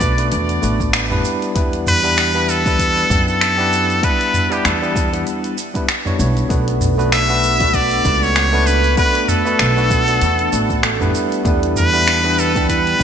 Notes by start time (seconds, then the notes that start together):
Already playing: B1 A3 B3 D4 F#4 B4 D5
0.01 kick, shaker
0.17 A3 B3 D4 F#4 B4, closed hi-hat, shaker
0.32 E2, closed hi-hat, shaker
0.49 closed hi-hat, shaker
0.62 A1 A3 B3 D4 F#4 B4, shaker
0.80 kick, shaker
0.93 finger snap, closed hi-hat, shaker
1.10 G3 B3 D4 E4 B4, mid tom, shaker
1.25 shaker
1.42 closed hi-hat, shaker
1.54 E2 G3 B3 D4 E4 B4, kick, closed hi-hat, shaker
1.73 closed hi-hat, shaker
1.87 B4, mid tom, shaker
2.03 G3 B3 D4 E4 B4, shaker
2.18 finger snap, closed hi-hat, shaker
2.34 G3 B3 D4 E4 B4, shaker
2.49 A4, shaker
2.65 G3 B3 D4 E4 B4, kick, closed hi-hat, shaker
2.79 kick, closed hi-hat, shaker
2.97 closed hi-hat, shaker
3.10 F#2 B3 D4 E4 G4 B4, kick, shaker
3.28 A4, shaker
3.41 finger snap, closed hi-hat, shaker
3.58 B3 D4 E4 G4 B4, shaker
3.73 shaker
3.90 closed hi-hat, shaker
4.02 G3 B3 D4 E4 B4, kick, closed hi-hat, shaker
4.21 closed hi-hat, shaker
4.34 mid tom, shaker
4.50 G3 B3 D4 E4 G4 B4, closed hi-hat, shaker
4.65 E2 A4, finger snap, closed hi-hat, shaker
4.81 G3 B3 D4 E4 B4, shaker
4.96 kick, shaker
5.12 G3 B3 D4 E4 B4, closed hi-hat, shaker
5.27 closed hi-hat, shaker
5.44 closed hi-hat, shaker
5.58 shaker
5.74 G3 B3 D4 E4 B4, kick, closed hi-hat, shaker
5.89 finger snap, closed hi-hat, shaker
6.05 G3 B3 D4 E4 C#5, mid tom, shaker
6.18 B1 G3 B3 D4 E4 C#5, shaker
6.37 closed hi-hat, shaker
6.49 B1 A3 B3 D4 F#4 B4, kick, closed hi-hat, shaker
6.68 B3, closed hi-hat, shaker
6.81 mid tom, shaker
6.97 A3 B3 D4 F#4 B4, shaker
7.12 B3 E5, finger snap, closed hi-hat, shaker
7.28 A3 B3 D4 F#4 B4, shaker
7.43 A4, shaker
7.59 A3 B3 D4 F#4 B4, kick, closed hi-hat, shaker
7.74 D4 D5, kick, closed hi-hat, shaker
7.91 closed hi-hat, shaker
8.04 C#2 A3 B3 D4 F#4 B4, kick, shaker
8.23 C#5, shaker
8.36 A3, finger snap, closed hi-hat, shaker
8.52 A3 B3 D4 F#4 B4, shaker
8.67 D4 B4, shaker
8.84 closed hi-hat, shaker
8.96 A3 B3 D4 F#4 B4, kick, closed hi-hat, shaker
9.15 B3, closed hi-hat, shaker
9.28 A4, mid tom, shaker
9.45 A3 B3 D4 F#4 B4, shaker
9.59 B1 B3, finger snap, closed hi-hat, shaker
9.76 A3 B3 D4 F#4 B4, shaker
9.90 A4, kick, shaker
10.07 A3 B3 D4 F#4 B4, closed hi-hat, shaker
10.21 E2 D4, closed hi-hat, shaker
10.39 closed hi-hat, shaker
10.51 A1 A3 B3 D4 F#4 B4, shaker
10.70 kick, shaker
10.83 A3, finger snap, closed hi-hat, shaker
11.00 G3 B3 D4 E4 B4, mid tom, shaker
11.15 E4, shaker
11.32 closed hi-hat, shaker
11.44 E2 G3 B3 D4 E4 B4, kick, closed hi-hat, shaker
11.63 D4, closed hi-hat, shaker
11.76 B4, mid tom, shaker
11.93 G3 B3 D4 E4 B4, shaker
12.07 D4, finger snap, closed hi-hat, shaker
12.24 G3 B3 D4 E4 G4 B4, shaker
12.38 A4 B4, shaker
12.54 G3 B3 D4 E4 G4 B4, kick, closed hi-hat, shaker
12.69 E4 B4, kick, closed hi-hat, shaker
12.87 closed hi-hat, shaker
12.99 F#2 B3 D4 G4, kick